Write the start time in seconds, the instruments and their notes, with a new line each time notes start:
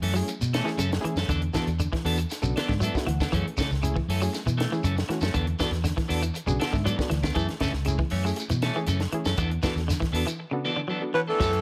0.02 fingered electric bass F#2, clean electric guitar E3 A3 C#4 A4, open hi-hat, shekere
0.14 clean electric guitar F#3, reed electric piano A3 C#4 E4 G#4, muted clean electric guitar stroke, claves, shekere
0.28 muted clean electric guitar stroke, closed hi-hat, shekere
0.41 fingered electric bass B2, muted clean electric guitar stroke, closed hi-hat, shekere
0.53 clean electric guitar E3 A3 C#4 A4, snare, closed hi-hat, claves
0.64 clean electric guitar E3, reed electric piano A3 C#4 E4 G#4, snare, shekere
0.78 fingered electric bass F#2, clean electric guitar C#3 A3 C#4 A4, muted clean electric guitar stroke, closed hi-hat, shekere
0.92 muted clean electric guitar stroke, snare, closed hi-hat, shekere
1.00 reed electric piano A3 C#4 E4 G#4, muted clean electric guitar stroke, muted fingered electric bass stroke, claves
1.05 clean electric guitar E3, closed hi-hat
1.16 fingered electric bass F#2, clean electric guitar A3 C#4 A4, snare, closed hi-hat, shekere
1.28 fingered electric bass E2, clean electric guitar D3 E3 D4 A4, muted clean electric guitar stroke, kick, closed hi-hat, claves, shekere
1.42 muted clean electric guitar stroke, closed hi-hat
1.53 clean electric guitar E3 B3 D4 A4, reed electric piano B3 D4 F#4 A4, kick, snare, closed hi-hat, shekere
1.67 fingered electric bass E2, muted clean electric guitar stroke, closed hi-hat, shekere
1.79 clean electric guitar D3, closed hi-hat, claves, shekere
1.93 clean electric guitar E3, muted clean electric guitar stroke, kick, snare, closed hi-hat
2.05 fingered electric bass E2, clean electric guitar E3 B3 D4 A4, reed electric piano B3 D4 F#4 A4, open hi-hat, shekere
2.17 muted clean electric guitar stroke, closed hi-hat, claves, shekere
2.30 muted clean electric guitar stroke, snare, closed hi-hat, shekere
2.42 fingered electric bass B1, clean electric guitar C#3, reed electric piano B3 D4 F#4 A4, muted clean electric guitar stroke, shekere
2.56 clean electric guitar E3 B3 D4 A4, reed electric piano D5, snare, closed hi-hat, claves
2.68 fingered electric bass G#2, clean electric guitar D3, kick, snare, shekere
2.80 clean electric guitar E3 F#3 B3 D4 A4, reed electric piano E5, closed hi-hat, shekere
2.94 reed electric piano B3 D4 F#4 A4, muted clean electric guitar stroke, kick, snare, shekere
3.07 fingered electric bass D2, clean electric guitar E3, reed electric piano F#5, muted clean electric guitar stroke, closed hi-hat, claves
3.20 clean electric guitar B3 D4 A4, kick, snare, closed hi-hat, shekere
3.32 fingered electric bass F#2, clean electric guitar E3 A3 C#4 A4, reed electric piano A3 C#4 E4 G#4, kick, closed hi-hat, claves, shekere
3.47 muted clean electric guitar stroke, closed hi-hat
3.57 clean electric guitar C#3 E3 A3 C#4 A4, muted fingered electric bass stroke, kick, snare, closed hi-hat, shekere
3.71 fingered electric bass C#2, muted clean electric guitar stroke, snare, shekere
3.82 clean electric guitar C#3, reed electric piano A3 C#4 E4 G#4, closed hi-hat, claves, shekere
3.96 clean electric guitar E3, muted clean electric guitar stroke, kick
4.09 fingered electric bass F#2, clean electric guitar E3 A3 C#4 A4, open hi-hat, shekere
4.20 clean electric guitar F#3, reed electric piano A3 C#4 E4 G#4, muted clean electric guitar stroke, claves, shekere
4.33 muted clean electric guitar stroke, snare, closed hi-hat, shekere
4.46 fingered electric bass B2, clean electric guitar E3, muted clean electric guitar stroke, closed hi-hat, shekere
4.58 clean electric guitar E3 A3, muted clean electric guitar stroke, snare, closed hi-hat, claves
4.72 clean electric guitar E3, reed electric piano A3 C#4 E4 G#4, shekere
4.84 fingered electric bass F#2, clean electric guitar C#3 E3 A3 C#4 A4, closed hi-hat, shekere
4.97 muted clean electric guitar stroke, snare, closed hi-hat, shekere
5.08 clean electric guitar E3, reed electric piano A3 C#4 E4 F#4, muted clean electric guitar stroke, muted fingered electric bass stroke, snare, closed hi-hat, claves
5.21 fingered electric bass F#2, clean electric guitar A3 C#4 A4, snare, closed hi-hat, shekere
5.33 fingered electric bass E2, clean electric guitar D3 E3 B3 D4 A4, kick, closed hi-hat, claves, shekere
5.47 muted clean electric guitar stroke, closed hi-hat
5.59 clean electric guitar E3 B3 D4 A4, reed electric piano B3 D4 F#4 A4, kick, snare, closed hi-hat, shekere
5.71 fingered electric bass E2, muted clean electric guitar stroke, snare, closed hi-hat, shekere
5.84 clean electric guitar D3, snare, closed hi-hat, claves, shekere
5.96 clean electric guitar E3, muted clean electric guitar stroke, kick, snare, closed hi-hat
6.08 fingered electric bass E2, clean electric guitar E3 B3 D4 A4, reed electric piano B3 D4 F#4 A4, open hi-hat, shekere
6.22 clean electric guitar E3, muted clean electric guitar stroke, closed hi-hat, claves, shekere
6.34 muted clean electric guitar stroke, closed hi-hat, shekere
6.46 fingered electric bass B1, clean electric guitar C#3, reed electric piano B3 D4 F#4 G#4, muted clean electric guitar stroke, shekere
6.60 clean electric guitar E3 B3 D4 A4, reed electric piano F#5, snare, closed hi-hat, claves
6.73 fingered electric bass G#2, clean electric guitar D3, reed electric piano E5, kick, snare, shekere
6.84 clean electric guitar E3 F#3 B3 D4 A4, reed electric piano D5, closed hi-hat, shekere
6.98 reed electric piano B3 D4 F#4 A4, muted clean electric guitar stroke, kick, snare, shekere
7.09 fingered electric bass D2, clean electric guitar E3, muted clean electric guitar stroke, snare, closed hi-hat, claves
7.23 clean electric guitar B3 D4, kick, snare, closed hi-hat, shekere
7.34 fingered electric bass F#2, clean electric guitar E3 A3 A4, reed electric piano A3 C#4 E4 G#4, muted clean electric guitar stroke, kick, closed hi-hat, claves, shekere
7.49 muted clean electric guitar stroke, snare, closed hi-hat
7.60 clean electric guitar C#3 E3 A3 C#4 A4, muted fingered electric bass stroke, kick, snare, closed hi-hat, shekere
7.73 fingered electric bass C#2, muted clean electric guitar stroke, snare, shekere
7.85 clean electric guitar C#3, reed electric piano A3 C#4 E4 G#4, closed hi-hat, claves, shekere
7.99 clean electric guitar E3, muted clean electric guitar stroke, kick
8.10 fingered electric bass F#2, clean electric guitar E3 A3 C#4, muted clean electric guitar stroke, open hi-hat, shekere
8.24 reed electric piano A3 C#4 E4 G#4, muted clean electric guitar stroke, claves, shekere
8.36 muted clean electric guitar stroke, closed hi-hat, shekere
8.49 fingered electric bass B2, clean electric guitar E3, muted clean electric guitar stroke, closed hi-hat, shekere
8.62 clean electric guitar E3 A3 C#4 A4, snare, closed hi-hat, claves
8.75 clean electric guitar E3, reed electric piano A3 C#4 E4 G#4, shekere
8.87 fingered electric bass F#2, clean electric guitar C#3 E3 A3 C#4 A4, closed hi-hat, shekere
9.00 muted clean electric guitar stroke, snare, closed hi-hat, shekere
9.12 clean electric guitar E3, reed electric piano A3 C#4 E4 G#4, muted fingered electric bass stroke, muted clean electric guitar stroke, closed hi-hat, claves
9.25 fingered electric bass F#2, clean electric guitar A3 C#4 A4, snare, closed hi-hat, shekere
9.37 fingered electric bass E2, clean electric guitar E3 B3 D4 A4, muted clean electric guitar stroke, kick, closed hi-hat, claves, shekere
9.51 muted clean electric guitar stroke, closed hi-hat
9.63 clean electric guitar E3 B3 D4 A4, reed electric piano B3 D4 F#4 A4, kick, snare, closed hi-hat, shekere
9.76 fingered electric bass E2, muted clean electric guitar stroke, snare, closed hi-hat, shekere
9.88 clean electric guitar D3, snare, closed hi-hat, claves, shekere
10.00 clean electric guitar E3, muted clean electric guitar stroke, kick, snare, closed hi-hat
10.12 fingered electric bass E2, clean electric guitar E3 B3 D4 A4, reed electric piano B3 D4 F#4 A4, open hi-hat, shekere
10.27 clean electric guitar E3, muted clean electric guitar stroke, closed hi-hat, claves, shekere
10.40 muted clean electric guitar stroke
10.51 clean electric guitar C#3, reed electric piano B3 D4 F#4 A4, muted clean electric guitar stroke
10.65 clean electric guitar E3 B3 D4 A4
10.76 clean electric guitar D3
10.88 clean electric guitar E3 F#3 B3 D4 A4
11.01 reed electric piano B3 D4 F#4 A4, muted clean electric guitar stroke
11.14 baritone saxophone B2, clean electric guitar E3, tenor saxophone F#3, alto saxophone B4, muted clean electric guitar stroke
11.28 baritone saxophone A2, tenor saxophone E3, clean electric guitar B3 D4 A4, alto saxophone A4
11.40 fingered electric bass F#2, clean electric guitar E3 F#3 A3 C#4 A4, kick, snare, crash, claves, shekere
11.52 muted clean electric guitar stroke, closed hi-hat